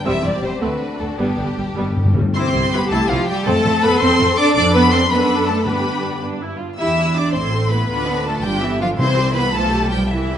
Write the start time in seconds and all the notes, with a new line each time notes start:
0.05 E1 E2 G3 C4 G4 E5
0.23 E1 E2 G3 C4 D5
0.42 E1 E2 G3 C5
0.61 D2 A3 C4 D4 F#4 B4
0.99 D2 A3 A4
1.18 G1 G2 G3 B3 G4
1.35 G1 G2 G3 B3
1.43 G2
1.51 G2
1.57 G1 G2 G3
1.66 G2
1.74 G2 G3 B3
1.78 G1 G2 B2
1.89 G2
1.97 G2
2.05 G2
2.14 G1 G2 A2 G3
2.21 G2
2.34 C2 C4 E4 G4 C5 C6
2.41 D6
2.49 C6
2.54 C2 E4
2.72 C2 B3 E4 B4 B5
2.90 C2 A3 E4 A4 A5
3.08 C2 F3 E4 F4 F5
3.27 G3 G4 G5
3.46 F2 A3 C4 A4 A5
3.64 F2 C4
3.82 F2 B3 C4 B4 B5
4.00 F2 C4 C5 C6
4.18 F2 C4
4.37 D4 D5 D6
4.54 F2 D4 A4 D5 D6
4.74 B3 B4 B5
4.91 C4 C5 C6
5.10 F#2 B3 D4 A4 B4 B5
5.47 A3 A4 A5
5.66 G2 B3 D4 G4 B4 B5
6.22 D4
6.41 E4
6.60 F4
6.77 E2 E4 G4 E5 E6
6.97 D4 E4
7.16 D4 E4 G4 D5 D6
7.33 A1 A3 C4 E4 C5 C6
7.53 C4 A4
7.70 A3 B3 E4 B4 B5
7.89 D2 B3 D4 F4 B4 B5
8.08 C4 D4
8.26 A3 D4 F4 A4 A5
8.43 G1 G3 D4 F4 G4 G5
8.62 E3 B3 E4 G4 E5
8.79 F3 D4 F4 F5
8.98 C2 C3 E3 C4 E4 C5 C6
9.17 G3 G4
9.34 E3 B3 E4 B4 B5
9.52 B1 F3 A3 F4 A4 A5
9.73 G3 G4
9.91 F3 G3 F4 G4 G5
10.10 C2 E3 E4 E5
10.31 G3 G4